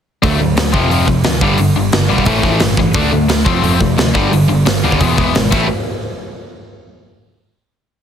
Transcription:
0.22 picked electric bass D2, overdriven electric guitar D3 F#3 A3, distorted electric guitar D4, kick, open hi-hat
0.39 picked electric bass D2, overdriven electric guitar D3 F#3, distorted electric guitar A3
0.56 picked electric bass D2, overdriven electric guitar D3 F#3, distorted electric guitar A3, snare, open hi-hat
0.72 picked electric bass F1, overdriven electric guitar F2 C3 F3, kick
0.89 picked electric bass F1, overdriven electric guitar F2 C3 F3, open hi-hat
1.07 picked electric bass F1, overdriven electric guitar F2 C3, kick
1.23 picked electric bass D2, overdriven electric guitar F2 C3, snare, open hi-hat
1.41 picked electric bass G1, overdriven electric guitar G2 D3 G3, kick
1.58 picked electric bass G1, overdriven electric guitar G2 D3, open hi-hat
1.76 picked electric bass G1, overdriven electric guitar G2 D3
1.92 picked electric bass G1, overdriven electric guitar G2 D3, snare, open hi-hat
2.08 picked electric bass B1, overdriven electric guitar G2 D3 G3
2.18 kick
2.25 picked electric bass A1, overdriven electric guitar A2 E3 A3, kick, open hi-hat
2.42 picked electric bass A1, overdriven electric guitar A2 E3 A3, kick
2.60 picked electric bass G1, overdriven electric guitar A2 E3, snare, open hi-hat
2.77 overdriven electric guitar A2 E3, kick
2.93 picked electric bass D2, overdriven electric guitar D3 A3 D4, kick, open hi-hat
3.12 picked electric bass D2, overdriven electric guitar D3 A3
3.28 picked electric bass D2, overdriven electric guitar D3 A3, snare, open hi-hat
3.45 picked electric bass F1, distorted electric guitar F2 C3, overdriven electric guitar F3 A3 C4, kick
3.62 picked electric bass F1, distorted electric guitar F2 C3, overdriven electric guitar F3 A3 C4, open hi-hat
3.78 picked electric bass F1, distorted electric guitar F2 C3, overdriven electric guitar F3 A3, kick
3.97 picked electric bass D2, distorted electric guitar F2 C3, overdriven electric guitar F3 A3, snare, open hi-hat
4.14 picked electric bass G1, overdriven electric guitar G2 D3 G3, kick
4.32 picked electric bass G1, overdriven electric guitar G2 D3, open hi-hat
4.49 picked electric bass G1, overdriven electric guitar G2 D3
4.66 picked electric bass G1, overdriven electric guitar G2 D3, snare, open hi-hat
4.83 picked electric bass D#2, overdriven electric guitar G2 D3 G3
4.92 kick
5.00 picked electric bass E1, distorted electric guitar E2 B2, overdriven electric guitar E3 G#3 B3, kick, open hi-hat
5.17 picked electric bass E1, distorted electric guitar E2 B2, overdriven electric guitar E3 G#3 B3, kick
5.35 picked electric bass G#1, distorted electric guitar E2 B2, overdriven electric guitar E3 G#3, snare, open hi-hat
5.51 picked electric bass A1, overdriven electric guitar A2 E3 A3 C4 E4 A4, kick, crash

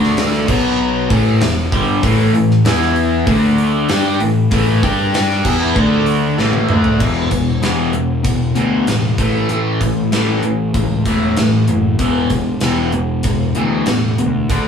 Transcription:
Already playing: picked electric bass D2, overdriven electric guitar D3 A3 D4
0.03 snare
0.17 snare, open hi-hat
0.34 snare
0.48 picked electric bass B1, overdriven electric guitar B2 F#3 B3, kick, crash
1.10 picked electric bass A1, overdriven electric guitar A2 E3 A3, kick, open hi-hat
1.41 picked electric bass E1, overdriven electric guitar E2 B2, snare, open hi-hat
1.72 picked electric bass G1, overdriven electric guitar G2 D3 G3, kick, open hi-hat
2.03 picked electric bass A1, overdriven electric guitar A2 E3 A3, kick, open hi-hat
2.34 picked electric bass A1, overdriven electric guitar A2 E3, open hi-hat
2.51 snare
2.65 picked electric bass E2, overdriven electric guitar E3 B3 E4, snare, open hi-hat
2.81 snare
2.96 open hi-hat
3.27 picked electric bass D2, overdriven electric guitar D3 A3 D4, kick, open hi-hat
3.58 open hi-hat
3.89 picked electric bass G2, overdriven electric guitar G3 D4 G4, snare, open hi-hat
4.20 picked electric bass A1, overdriven electric guitar A2 E3, open hi-hat
4.51 picked electric bass A1, overdriven electric guitar A2 E3 A3, kick, open hi-hat
4.83 picked electric bass G2, overdriven electric guitar G3 D4 G4, kick, open hi-hat
5.14 snare, open hi-hat
5.31 snare
5.45 picked electric bass E2, overdriven electric guitar E3 B3 E4, kick, crash
5.76 picked electric bass D2, overdriven electric guitar D3 A3 D4, kick
6.06 open hi-hat
6.38 picked electric bass A1, overdriven electric guitar A2 E3 A3, snare
6.53 high tom
6.69 picked electric bass D2, overdriven electric guitar D3 A3 D4, mid tom
6.84 floor tom
7.00 picked electric bass E1, overdriven electric guitar E2 B2 E3, kick, crash
7.30 picked electric bass E1, overdriven electric guitar E2 B2, kick, closed hi-hat
7.62 picked electric bass E1, overdriven electric guitar E2 B2 E3, snare, closed hi-hat
7.93 picked electric bass E1, overdriven electric guitar E2 B2, closed hi-hat
8.23 picked electric bass E1, overdriven electric guitar E2 B2, kick, closed hi-hat
8.55 picked electric bass D2, overdriven electric guitar E2 B2 E3, closed hi-hat
8.87 picked electric bass A1, overdriven electric guitar E2 B2, snare, closed hi-hat
9.18 picked electric bass A1, overdriven electric guitar A2 E3 A3, kick, closed hi-hat
9.49 picked electric bass A1, overdriven electric guitar A2 E3 A3, closed hi-hat
9.81 picked electric bass A1, overdriven electric guitar A2 E3, kick, closed hi-hat
10.12 picked electric bass A1, overdriven electric guitar A2 E3 A3, snare, closed hi-hat
10.43 picked electric bass A1, overdriven electric guitar A2 E3, closed hi-hat
10.74 picked electric bass C#2, overdriven electric guitar A2 E3, kick, closed hi-hat
11.05 picked electric bass E1, overdriven electric guitar A2 E3 A3, kick, closed hi-hat
11.36 picked electric bass A1, overdriven electric guitar A2 E3, snare, closed hi-hat
11.68 picked electric bass F#1, overdriven electric guitar A2 E3, closed hi-hat
11.99 picked electric bass E1, overdriven electric guitar E2 B2 E3, kick, closed hi-hat
12.30 picked electric bass E1, overdriven electric guitar E2 B2, kick, closed hi-hat
12.60 picked electric bass E1, overdriven electric guitar E2 B2 E3, snare, closed hi-hat
12.92 picked electric bass E1, overdriven electric guitar E2 B2, closed hi-hat
13.23 picked electric bass E1, overdriven electric guitar E2 B2, kick, closed hi-hat
13.55 picked electric bass D2, overdriven electric guitar E2 B2 E3, closed hi-hat
13.86 picked electric bass A1, overdriven electric guitar E2 B2, snare, closed hi-hat
14.18 picked electric bass D2, overdriven electric guitar E2 B2, closed hi-hat
14.50 picked electric bass D2, overdriven electric guitar D3 A3 D4, kick, closed hi-hat

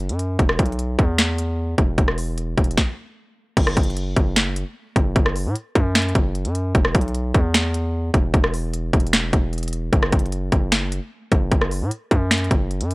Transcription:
Already playing: 808-style bass F#1
0.09 808-style bass F#2, closed hi-hat
0.19 closed hi-hat
0.39 808-style bass E1, kick, closed hi-hat
0.49 cross-stick
0.59 808-style bass B1, kick, closed hi-hat
0.66 closed hi-hat
0.72 closed hi-hat
0.79 closed hi-hat
0.99 808-style bass E2, kick, closed hi-hat
1.18 finger snap, snare, closed hi-hat
1.38 closed hi-hat
1.78 808-style bass E1, kick, closed hi-hat
1.98 808-style bass E1, kick, closed hi-hat
2.08 cross-stick
2.18 open hi-hat
2.38 closed hi-hat
2.58 808-style bass E1, kick, closed hi-hat
2.64 closed hi-hat
2.71 closed hi-hat
2.77 kick, snare
3.57 808-style bass F#1, kick, closed hi-hat, crash
3.67 cross-stick
3.77 808-style bass F#1, kick, closed hi-hat
3.83 closed hi-hat
3.90 closed hi-hat
3.97 closed hi-hat
4.16 808-style bass F#1, kick, closed hi-hat
4.36 finger snap, snare, closed hi-hat
4.56 closed hi-hat
4.96 808-style bass F#1, kick, closed hi-hat
5.16 808-style bass F#1, kick, closed hi-hat
5.26 cross-stick
5.36 open hi-hat
5.46 808-style bass A2
5.56 closed hi-hat
5.75 808-style bass F#2, kick, closed hi-hat
5.95 finger snap, snare, closed hi-hat
6.02 closed hi-hat
6.09 closed hi-hat
6.15 808-style bass F#1, kick, closed hi-hat
6.35 closed hi-hat
6.45 808-style bass F#2, closed hi-hat
6.55 closed hi-hat
6.75 808-style bass E1, kick, closed hi-hat
6.85 cross-stick
6.95 808-style bass B1, kick, closed hi-hat
7.01 closed hi-hat
7.08 closed hi-hat
7.15 closed hi-hat
7.34 808-style bass E2, kick, closed hi-hat
7.54 finger snap, snare, closed hi-hat
7.74 closed hi-hat
8.14 808-style bass E1, kick, closed hi-hat
8.34 808-style bass E1, kick, closed hi-hat
8.44 cross-stick
8.54 open hi-hat
8.74 closed hi-hat
8.93 808-style bass E1, kick, closed hi-hat
9.00 closed hi-hat
9.07 closed hi-hat
9.13 finger snap, snare, closed hi-hat
9.33 808-style bass E1, kick, closed hi-hat
9.53 closed hi-hat
9.58 closed hi-hat
9.63 closed hi-hat
9.68 closed hi-hat
9.73 closed hi-hat
9.93 808-style bass F#1, kick, closed hi-hat
10.03 cross-stick
10.12 808-style bass F#1, kick, closed hi-hat
10.19 closed hi-hat
10.26 closed hi-hat
10.32 closed hi-hat
10.52 808-style bass F#1, kick, closed hi-hat
10.72 finger snap, snare, closed hi-hat
10.92 closed hi-hat
11.32 808-style bass F#1, kick, closed hi-hat
11.52 808-style bass F#1, kick, closed hi-hat
11.61 cross-stick
11.71 open hi-hat
11.81 808-style bass A2
11.91 closed hi-hat
12.11 808-style bass F#2, kick, closed hi-hat
12.31 finger snap, snare, closed hi-hat
12.38 closed hi-hat
12.44 closed hi-hat
12.51 808-style bass F#1, kick, closed hi-hat
12.71 closed hi-hat
12.81 808-style bass F#2, closed hi-hat
12.91 closed hi-hat

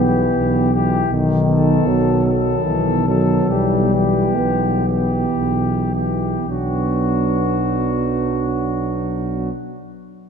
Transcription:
Already playing: tuba B1, euphonium B3
0.00 trombone E3, french horn section B3, trumpet section G4
0.38 tuba B1
0.71 trombone E3, french horn section B3, trumpet section G4
1.10 tuba B1, euphonium D#3
1.48 trombone D#3, french horn section B3, trumpet section A4
1.86 tuba B1, euphonium F#3
2.24 trombone D#3, french horn section B3, trumpet section A4
2.65 tuba B1, euphonium E3
3.06 trombone D#3, euphonium F#3, french horn section B3, trumpet section A4
3.48 tuba B1, trombone E3, euphonium G3, french horn section B3, trumpet section G4
3.93 trombone E3, french horn section B3, trumpet section G4
4.38 tuba B1, euphonium B3
4.86 trombone E3, french horn section B3, trumpet section G4
5.37 tuba B1
5.92 trombone E3, french horn section B3, trumpet section G4
6.48 tuba B1, trombone F#3, euphonium B3, french horn section D4, trumpet section F#4

